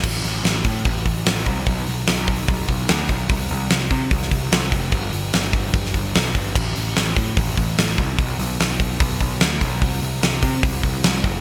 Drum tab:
CC |x---------------|----------------|----------------|----------------|
HH |--o-o-o-o-o-o-o-|o-o-o-o-o-o-o-o-|o-o-o-o-o-o-o-o-|o-o-o-o-o-o-o-o-|
SD |----o-------o---|----o-------o---|----o----o--o---|----o----o--o---|
BD |o-----o-o-o---o-|o-----o-o-o---o-|o-----o-o-o---o-|o-----o-o-o---o-|

CC |x---------------|----------------|----------------|
HH |--o-o-o-o-o-o-o-|o-o-o-o-o-o-o-o-|o-o-o-o-o-o-o-o-|
SD |----o-------o---|----o-------o---|----o-------o---|
BD |o-----o-o-o---o-|o-----o-o-o---o-|o-----o-o-o---o-|